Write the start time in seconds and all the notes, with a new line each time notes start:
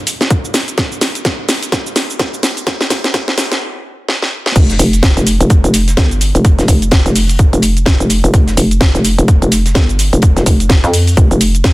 0.07 open hi-hat, cabasa
0.21 snare, cabasa
0.30 kick, closed hi-hat, cabasa
0.45 cabasa
0.54 snare, open hi-hat, cabasa
0.68 closed hi-hat, cabasa
0.78 kick, snare, closed hi-hat, cabasa
0.92 cabasa
1.01 snare, open hi-hat, cabasa
1.15 closed hi-hat, cabasa
1.25 kick, snare, closed hi-hat, cabasa
1.49 snare, open hi-hat, cabasa
1.63 closed hi-hat, cabasa
1.72 kick, snare, closed hi-hat, cabasa
1.87 cabasa
1.96 snare, open hi-hat, cabasa
2.10 cabasa
2.19 kick, snare, closed hi-hat, cabasa
2.34 cabasa
2.43 snare, open hi-hat, cabasa
2.57 closed hi-hat, cabasa
2.67 kick, snare, closed hi-hat, cabasa
2.81 snare, cabasa
2.90 kick, snare, open hi-hat, cabasa
3.04 snare, closed hi-hat, cabasa
3.14 kick, snare, closed hi-hat, cabasa
3.28 snare
3.38 snare, open hi-hat, cabasa
3.52 snare, closed hi-hat, cabasa
4.08 snare
4.22 snare
4.46 snare
4.56 F1, kick, closed hi-hat, crash, cabasa
4.70 snare, closed hi-hat, cabasa
4.79 F1, closed hi-hat, open hi-hat, cabasa
4.93 closed hi-hat, cabasa
5.03 kick, snare, closed hi-hat, cabasa
5.16 F1, snare, closed hi-hat, cabasa
5.27 closed hi-hat, open hi-hat, cabasa
5.41 F1, closed hi-hat, cabasa
5.50 kick, closed hi-hat, cabasa
5.64 F1, closed hi-hat, cabasa
5.74 snare, closed hi-hat, open hi-hat, cabasa
5.88 snare, closed hi-hat, cabasa
5.97 G1, kick, snare, closed hi-hat, cabasa
6.11 closed hi-hat, cabasa
6.21 closed hi-hat, open hi-hat, cabasa
6.35 F1, closed hi-hat, cabasa
6.45 kick, closed hi-hat, cabasa
6.59 F1, snare, closed hi-hat, cabasa
6.68 F1, kick, closed hi-hat, open hi-hat, cabasa
6.82 closed hi-hat, cabasa
6.91 kick, snare, closed hi-hat, cabasa
7.06 F1, snare, closed hi-hat, cabasa
7.16 open hi-hat, cabasa
7.29 closed hi-hat, cabasa
7.39 kick, closed hi-hat, cabasa
7.53 F1, closed hi-hat, cabasa
7.62 closed hi-hat, open hi-hat, cabasa
7.77 closed hi-hat, cabasa
7.86 kick, snare, closed hi-hat, cabasa
8.00 F1, closed hi-hat, cabasa
8.10 closed hi-hat, open hi-hat, cabasa
8.24 F1, closed hi-hat, cabasa
8.34 F1, kick, closed hi-hat, cabasa
8.47 snare, closed hi-hat, cabasa
8.57 F1, closed hi-hat, open hi-hat, cabasa
8.71 closed hi-hat, cabasa
8.81 kick, snare, closed hi-hat, cabasa
8.95 F1, snare, closed hi-hat, cabasa
9.05 closed hi-hat, open hi-hat, cabasa
9.18 F1, closed hi-hat, cabasa
9.28 kick, closed hi-hat, cabasa
9.42 F1, closed hi-hat, cabasa
9.52 snare, closed hi-hat, open hi-hat, cabasa
9.66 snare, closed hi-hat, cabasa
9.74 G1, kick, snare, closed hi-hat, cabasa
9.89 closed hi-hat, cabasa
9.99 closed hi-hat, open hi-hat, cabasa
10.13 F1, closed hi-hat, cabasa
10.22 kick, closed hi-hat, cabasa
10.36 F1, snare, closed hi-hat, cabasa
10.46 F1, kick, closed hi-hat, open hi-hat, cabasa
10.60 closed hi-hat, cabasa
10.69 kick, snare, closed hi-hat, cabasa
10.84 F2, snare, closed hi-hat, cabasa
10.94 open hi-hat, cabasa
11.07 closed hi-hat, cabasa
11.17 F1, kick, closed hi-hat, cabasa
11.31 F1, closed hi-hat, cabasa
11.41 closed hi-hat, open hi-hat, cabasa
11.55 closed hi-hat, cabasa
11.64 kick, snare, closed hi-hat, cabasa